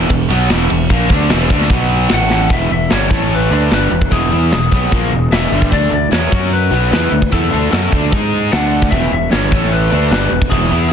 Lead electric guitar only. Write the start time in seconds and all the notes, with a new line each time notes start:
2.14 F#5
2.53 E5
2.72 E5
2.93 C#5
3.34 B4
3.74 B4
4.12 G#4
4.52 G#4
5.32 E5
5.73 D5
5.93 D5
6.12 C#5
6.53 B4
6.93 B4
7.33 A4
7.73 A4
8.53 F#5
8.91 E5
9.13 E5
9.32 C#5
9.72 B4
10.11 B4
10.50 G#4
10.89 G#4